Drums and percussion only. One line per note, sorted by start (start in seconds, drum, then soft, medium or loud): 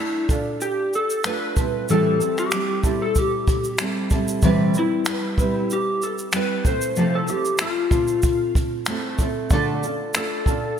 0.29 kick medium
0.29 shaker soft
0.61 shaker medium
0.94 shaker soft
1.10 shaker soft
1.24 finger snap medium
1.24 shaker medium
1.57 kick medium
1.57 shaker soft
1.89 shaker soft
2.21 shaker soft
2.38 finger snap soft
2.38 shaker soft
2.51 finger snap loud
2.51 shaker medium
2.84 kick medium
2.84 shaker soft
3.15 kick medium
3.15 shaker medium
3.48 kick medium
3.48 shaker soft
3.64 shaker soft
3.78 finger snap medium
3.78 shaker medium
4.10 kick medium
4.10 shaker soft
4.28 shaker soft
4.42 kick medium
4.42 shaker medium
4.74 shaker soft
5.06 finger snap loud
5.06 shaker medium
5.38 kick medium
5.38 shaker soft
5.71 shaker medium
6.02 shaker soft
6.18 shaker soft
6.32 finger snap medium
6.32 shaker medium
6.65 kick medium
6.65 shaker medium
6.81 shaker medium
6.96 shaker medium
7.28 shaker soft
7.45 shaker soft
7.58 finger snap loud
7.58 shaker medium
7.91 kick medium
7.91 shaker soft
8.08 shaker soft
8.23 kick medium
8.23 shaker medium
8.55 kick medium
8.55 shaker soft
8.86 finger snap medium
8.86 shaker medium
9.19 kick medium
9.19 shaker soft
9.50 kick loud
9.50 shaker medium
9.83 shaker soft
10.14 finger snap medium
10.14 shaker medium
10.46 kick medium
10.46 shaker soft